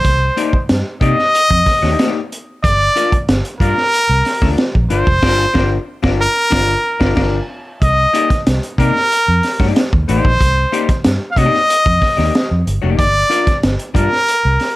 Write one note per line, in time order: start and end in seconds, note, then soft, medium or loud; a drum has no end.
0.00 0.66 C5 loud
0.05 0.29 C2 medium
0.05 kick loud
0.05 closed hi-hat medium
0.37 0.51 A#3 medium
0.37 0.52 D#4 medium
0.37 0.52 G4 medium
0.37 0.52 D5 loud
0.37 closed hi-hat medium
0.53 muted fingered electric bass stroke soft
0.53 kick medium
0.69 0.82 G2 loud
0.69 snare loud
0.69 closed hi-hat medium
1.01 1.13 C3 medium
1.01 1.16 A#3 medium
1.01 1.16 D#4 medium
1.01 1.16 G4 loud
1.01 1.17 D5 medium
1.01 2.28 D#5 loud
1.01 kick medium
1.01 closed hi-hat medium
1.19 snare soft
1.35 closed hi-hat medium
1.51 1.62 F2 medium
1.51 kick loud
1.66 kick medium
1.66 snare soft
1.66 open hi-hat medium
1.82 1.95 D#2 medium
1.82 1.98 A#3 medium
1.82 1.98 D#4 medium
1.82 1.98 G4 medium
1.82 1.99 D5 medium
1.82 snare soft
1.99 2.19 A#3 medium
1.99 2.19 D#4 medium
1.99 2.19 G4 medium
1.99 2.20 D5 medium
1.99 snare loud
1.99 closed hi-hat medium
2.32 closed hi-hat medium
2.63 2.88 G1 loud
2.63 3.24 D5 loud
2.63 kick loud
2.63 closed hi-hat medium
2.96 3.10 D4 medium
2.96 3.11 F4 medium
2.96 3.11 A#4 medium
2.96 3.11 D5 medium
2.96 closed hi-hat medium
3.12 muted fingered electric bass stroke soft
3.12 kick medium
3.12 closed hi-hat medium
3.29 3.41 G1 medium
3.29 snare loud
3.29 closed hi-hat medium
3.45 closed hi-hat medium
3.60 3.72 G2 medium
3.60 3.75 D4 medium
3.60 3.75 F4 medium
3.60 4.54 A#4 loud
3.60 3.76 A#4 medium
3.60 3.76 D5 medium
3.60 kick medium
3.60 closed hi-hat medium
3.78 snare soft
3.94 closed hi-hat medium
4.09 4.21 C2 medium
4.25 snare soft
4.25 open hi-hat medium
4.42 4.54 D2 loud
4.42 4.63 D4 medium
4.42 4.62 F4 medium
4.42 4.62 A#4 medium
4.42 4.62 D5 medium
4.42 kick medium
4.42 snare soft
4.58 snare medium
4.58 closed hi-hat medium
4.75 4.87 A#1 medium
4.75 kick medium
4.90 5.03 G1 medium
4.90 5.05 D4 medium
4.90 5.05 F4 medium
4.90 5.05 A#4 medium
4.90 5.84 C5 loud
4.90 5.05 D5 medium
4.90 closed hi-hat medium
5.07 5.22 F1 medium
5.07 kick medium
5.22 5.45 G1 medium
5.22 5.45 D4 loud
5.22 5.45 F4 loud
5.22 5.45 A#4 loud
5.22 5.45 D5 loud
5.22 kick medium
5.22 snare medium
5.22 crash medium
5.54 5.77 G1 loud
5.54 5.76 D4 loud
5.54 5.76 F4 loud
5.54 5.77 A#4 loud
5.54 5.77 D5 loud
5.54 kick loud
5.54 snare loud
6.03 6.26 G1 loud
6.03 6.25 D4 loud
6.03 6.25 F4 loud
6.03 6.25 A#4 loud
6.03 6.26 D5 loud
6.03 kick loud
6.03 snare loud
6.20 7.46 A#4 loud
6.50 6.74 G1 loud
6.50 6.73 D4 medium
6.50 6.74 F4 medium
6.50 6.74 A#4 medium
6.50 6.74 D5 loud
6.50 kick loud
6.50 snare loud
7.00 7.15 G1 medium
7.00 7.14 D4 loud
7.00 7.14 F4 loud
7.00 7.14 A#4 medium
7.00 7.14 D5 medium
7.00 kick loud
7.00 snare loud
7.15 7.39 G1 loud
7.15 7.38 D4 loud
7.15 7.38 F4 loud
7.15 7.39 A#4 loud
7.15 7.39 D5 medium
7.15 kick loud
7.15 snare loud
7.15 crash medium
7.82 8.05 C2 medium
7.82 8.43 D#5 loud
7.82 kick loud
7.82 closed hi-hat medium
8.13 8.28 A#3 medium
8.13 8.28 D#4 loud
8.13 8.28 G4 loud
8.13 8.29 D5 loud
8.13 closed hi-hat medium
8.30 muted fingered electric bass stroke soft
8.30 kick loud
8.30 snare soft
8.30 closed hi-hat medium
8.47 8.59 C2 medium
8.47 snare loud
8.47 closed hi-hat loud
8.63 closed hi-hat medium
8.78 8.90 C3 loud
8.78 8.93 A#3 medium
8.78 8.93 D#4 medium
8.78 8.93 G4 medium
8.78 9.72 A#4 loud
8.78 8.93 D5 medium
8.78 kick medium
8.78 closed hi-hat medium
8.96 snare soft
9.12 closed hi-hat medium
9.28 9.40 F2 medium
9.43 snare soft
9.43 open hi-hat medium
9.60 9.72 G2 loud
9.60 9.80 A#3 medium
9.60 9.80 D#4 medium
9.60 9.80 G4 medium
9.60 9.80 D5 medium
9.60 kick medium
9.60 snare soft
9.76 snare loud
9.76 closed hi-hat medium
9.93 10.04 D#2 medium
9.93 kick loud
10.08 10.20 A1 medium
10.08 10.28 A#3 medium
10.08 10.28 D#4 medium
10.08 10.29 G4 medium
10.08 11.02 C5 loud
10.08 10.29 D5 medium
10.08 closed hi-hat medium
10.25 10.36 A#1 loud
10.25 kick loud
10.41 10.64 C2 loud
10.41 kick loud
10.41 closed hi-hat medium
10.72 10.87 A#3 loud
10.72 10.87 D#4 loud
10.72 10.87 G4 loud
10.72 10.87 D5 medium
10.72 closed hi-hat medium
10.89 muted fingered electric bass stroke soft
10.89 kick loud
10.89 snare soft
10.89 closed hi-hat medium
11.04 11.17 G2 medium
11.04 snare loud
11.04 closed hi-hat loud
11.31 11.39 F5 medium
11.36 11.49 C3 medium
11.36 11.57 A#3 medium
11.36 11.57 D#4 medium
11.36 11.57 G4 medium
11.36 11.58 D5 loud
11.36 12.67 D#5 loud
11.36 kick medium
11.36 closed hi-hat medium
11.54 snare soft
11.70 closed hi-hat medium
11.86 11.98 F2 medium
11.86 kick loud
12.01 kick loud
12.01 snare soft
12.01 open hi-hat medium
12.17 12.30 D#2 medium
12.17 12.33 A#3 medium
12.17 12.32 D#4 medium
12.17 12.32 G4 medium
12.17 12.32 D5 medium
12.17 snare soft
12.35 snare loud
12.35 closed hi-hat medium
12.51 12.63 F2 medium
12.67 12.79 G1 medium
12.67 closed hi-hat medium
12.82 12.95 F1 loud
12.82 13.03 A#3 medium
12.82 13.03 D#4 medium
12.82 13.02 G4 medium
12.82 13.02 D5 medium
12.99 13.23 G1 medium
12.99 13.59 D5 loud
12.99 kick loud
12.99 closed hi-hat medium
13.30 13.45 D4 medium
13.30 13.45 F4 medium
13.30 13.45 A#4 loud
13.30 13.45 D5 medium
13.30 closed hi-hat medium
13.47 muted fingered electric bass stroke soft
13.47 kick loud
13.47 snare soft
13.47 closed hi-hat medium
13.63 13.76 G1 loud
13.63 snare loud
13.63 closed hi-hat medium
13.79 closed hi-hat medium
13.94 14.07 G2 medium
13.94 14.09 D4 medium
13.94 14.10 F4 medium
13.94 14.10 A#4 medium
13.94 14.76 A#4 loud
13.94 14.10 D5 loud
13.94 kick loud
13.94 closed hi-hat medium
14.12 snare soft
14.28 closed hi-hat medium
14.45 14.57 C2 medium
14.59 snare soft
14.59 open hi-hat medium